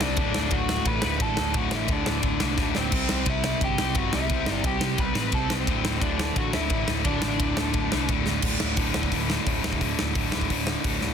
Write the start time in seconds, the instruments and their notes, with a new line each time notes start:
Already playing: overdriven electric guitar C3 G3 C4
0.01 picked electric bass C2, lead electric guitar D4 D5, snare
0.17 picked electric bass D1, overdriven electric guitar D2 A2 D3, kick, ride
0.34 picked electric bass D1, snare
0.51 picked electric bass D1, lead electric guitar F#4 F#5, kick, ride
0.69 distorted electric guitar D2 A2 D3, snare
0.85 picked electric bass A1, lead electric guitar B4 B5, kick, ride
1.02 picked electric bass D1, overdriven electric guitar A2 D3, snare
1.06 overdriven electric guitar D2
1.18 picked electric bass A1, overdriven electric guitar D2 A2 D3, lead electric guitar A4 A5, kick, ride
1.37 picked electric bass D1, snare
1.53 picked electric bass D1, overdriven electric guitar D2 A2 D3, kick, ride
1.57 lead electric guitar F#4 F#5
1.71 picked electric bass A1, lead electric guitar E4, snare
1.76 lead electric guitar E5
1.88 picked electric bass D1, lead electric guitar D4, kick, ride
1.92 lead electric guitar D5
2.06 picked electric bass D1, distorted electric guitar D2 A2 D3, snare
2.23 picked electric bass D1, kick, ride
2.40 picked electric bass C2, overdriven electric guitar D2 A2 D3, snare
2.56 picked electric bass D1, overdriven electric guitar D2 A2 D3, kick, snare
2.75 picked electric bass D1, lead electric guitar C4 C5, snare
2.92 picked electric bass C2, overdriven electric guitar C3 G3 C4, kick, crash
3.09 picked electric bass C2, snare
3.26 picked electric bass C2, lead electric guitar E5, kick, ride
3.30 lead electric guitar E4
3.44 distorted electric guitar C3 G3 C4, snare
3.61 picked electric bass G1, lead electric guitar G4 G5, kick, ride
3.78 picked electric bass C2, overdriven electric guitar G3 C4, snare
3.83 overdriven electric guitar C3
3.95 picked electric bass G1, overdriven electric guitar C3 G3, lead electric guitar F#4 F#5, kick, ride
3.99 overdriven electric guitar C4
4.13 picked electric bass C2, lead electric guitar E4 E5, snare
4.29 picked electric bass C2, overdriven electric guitar C3 G3 C4, kick, ride
4.46 picked electric bass G1, snare
4.64 picked electric bass C2, lead electric guitar G4 G5, kick, ride
4.81 picked electric bass C2, distorted electric guitar C3 G3 C4, snare
4.98 picked electric bass C2, lead electric guitar B4 B5, kick, ride
5.14 picked electric bass A1, overdriven electric guitar C3 G3 C4, snare
5.32 picked electric bass C2, overdriven electric guitar C3 G3 C4, lead electric guitar A4 A5, kick, ride
5.50 picked electric bass C2, lead electric guitar C4 C5, snare
5.66 picked electric bass D1, overdriven electric guitar D2 A2 D3, kick, ride
5.85 picked electric bass D1, snare
6.01 picked electric bass D1, lead electric guitar D4 D5, kick, ride
6.19 distorted electric guitar D2 A2 D3, snare
6.36 picked electric bass A1, lead electric guitar F#4 F#5, kick, ride
6.52 picked electric bass D1, overdriven electric guitar D2 A2 D3, lead electric guitar E4 E5, snare
6.70 picked electric bass A1, overdriven electric guitar D2 A2 D3, kick, ride
6.88 picked electric bass D1, snare
7.04 picked electric bass D1, overdriven electric guitar D2 A2 D3, lead electric guitar D4 D5, kick, ride
7.22 picked electric bass A1, snare
7.40 picked electric bass D1, kick, ride
7.57 picked electric bass D1, distorted electric guitar D2 A2 D3, snare
7.74 picked electric bass D1, kick, ride
7.91 picked electric bass C2, overdriven electric guitar D2 A2 D3, snare
8.08 picked electric bass D1, overdriven electric guitar D2 A2 D3, kick, ride
8.26 picked electric bass D1, snare
8.42 picked electric bass D1, overdriven electric guitar D2 A2 D3, kick, crash
8.60 picked electric bass D1, snare
8.77 picked electric bass D1, overdriven electric guitar D2 A2 D3, kick, open hi-hat
8.94 picked electric bass D1, overdriven electric guitar D2 A2 D3, snare
9.03 kick
9.12 picked electric bass D1, overdriven electric guitar D2 A2 D3, kick, open hi-hat
9.30 snare
9.46 picked electric bass D1, overdriven electric guitar D2 A2 D3, kick, open hi-hat
9.63 picked electric bass D1, overdriven electric guitar D2 A2 D3, snare
9.73 kick
9.81 picked electric bass D1, overdriven electric guitar D2 A2 D3, kick, open hi-hat
9.99 picked electric bass D1, snare
10.15 picked electric bass D1, overdriven electric guitar D2 A2 D3, kick, open hi-hat
10.32 overdriven electric guitar D2 A2 D3, snare
10.36 picked electric bass D1
10.41 kick
10.50 picked electric bass D1, overdriven electric guitar D2 A2 D3, kick, open hi-hat
10.67 snare
10.84 picked electric bass D1, overdriven electric guitar D2 A2 D3, kick, open hi-hat
11.01 picked electric bass D1, overdriven electric guitar D2 A2 D3, snare